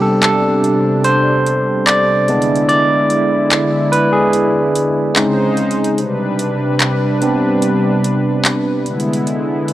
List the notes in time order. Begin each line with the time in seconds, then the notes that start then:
Already playing: C3 G3 B3 C4 D4 G4
0.02 A4
0.22 A4, clap, closed hi-hat
0.64 closed hi-hat
1.04 C5, closed hi-hat
1.47 closed hi-hat
1.87 D5, clap, closed hi-hat
2.28 D3 G#3 B3 D4 E4, closed hi-hat
2.42 closed hi-hat
2.56 closed hi-hat
2.69 D5, closed hi-hat
3.10 closed hi-hat
3.51 clap, closed hi-hat
3.92 B4, closed hi-hat
4.13 G#4
4.33 closed hi-hat
4.75 closed hi-hat
5.16 C#3 G#3 C4 C#4 D#4 C5, clap, closed hi-hat
5.57 closed hi-hat
5.71 closed hi-hat
5.84 closed hi-hat
5.98 C3 G3 D4 B4, closed hi-hat
6.39 closed hi-hat
6.80 clap, closed hi-hat
7.22 G3 B3 C4 D4, closed hi-hat
7.62 closed hi-hat
8.04 closed hi-hat
8.45 clap, closed hi-hat
8.86 D3 G#3 B3 E4, closed hi-hat
9.00 closed hi-hat
9.13 closed hi-hat
9.27 closed hi-hat
9.68 closed hi-hat